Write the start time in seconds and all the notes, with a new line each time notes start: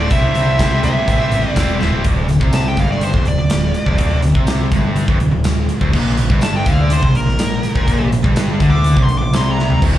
Already playing: D3 A3
0.09 C2 C3 G3 C4 E4 G4 C5 E5, kick, closed hi-hat, tambourine
0.23 C2
0.34 C4 E4 G4 C5, closed hi-hat, tambourine
0.58 C4 E4 G4 C5, kick, snare, closed hi-hat, tambourine
0.83 C2 E4 G4 C5 E5, closed hi-hat, tambourine
0.87 C4
1.07 A1 C3 G3 C4 E4 G4 C5, kick, closed hi-hat, tambourine
1.32 A1, closed hi-hat, tambourine
1.49 D5
1.56 E1 C4 E4 G4 C5, kick, snare, closed hi-hat, tambourine
1.80 D1 C4 E4 G4 C5, snare, tambourine
1.93 floor tom
2.04 D1 D2, kick, closed hi-hat, tambourine
2.28 D1 D2, closed hi-hat, tambourine
2.41 C2 C3, kick
2.52 A5, snare, closed hi-hat, tambourine
2.68 G5
2.77 G1 G2 F5, kick, closed hi-hat, tambourine
2.92 D5
3.01 C5, closed hi-hat, tambourine
3.13 F1 F2, kick
3.25 D1 D2 D5, closed hi-hat
3.38 D1 D2
3.49 D1 D2, snare, closed hi-hat, tambourine
3.74 closed hi-hat, tambourine
3.86 D1 D2, kick
3.98 D1 D2, kick, closed hi-hat, tambourine
4.22 D1 D2, closed hi-hat, tambourine
4.35 C2 C3, kick
4.47 snare, closed hi-hat, tambourine
4.71 G1 G2, kick, closed hi-hat, tambourine
4.96 closed hi-hat, tambourine
5.08 F1 F2, kick
5.20 D1 D2, closed hi-hat
5.32 D1 D2
5.44 D1 D2, snare, closed hi-hat, tambourine
5.69 closed hi-hat, tambourine
5.81 D1 D2, kick
5.93 A#1 A#2, kick, crash
6.17 A#1 A#2, closed hi-hat, tambourine
6.30 G1 G2, kick
6.41 A5, snare, closed hi-hat, tambourine
6.56 G5
6.66 D2 D3 F5, kick, closed hi-hat, tambourine
6.81 D5
6.90 C5, closed hi-hat, tambourine
7.02 C2 C3, kick
7.14 A#1 A#2 A#4, closed hi-hat
7.26 A#1 A#2, snare
7.39 A#1 A#2, snare, closed hi-hat, tambourine
7.63 closed hi-hat, tambourine
7.75 A#1 A#2, kick
7.88 A#1 A#2, kick, closed hi-hat, tambourine
8.12 A#1 A#2, closed hi-hat, tambourine
8.24 G1 G2, kick
8.36 snare, closed hi-hat, tambourine
8.60 D2 D3, kick, closed hi-hat
8.70 D6
8.84 closed hi-hat, tambourine
8.97 C2 C3, kick
9.04 C6
9.09 A#1 A#2, closed hi-hat, tambourine
9.18 A#1 A#2 D6
9.33 C2 C3 C6, snare, closed hi-hat, tambourine
9.51 A#5
9.59 snare
9.70 floor tom
9.82 D1 D2, kick, crash, tambourine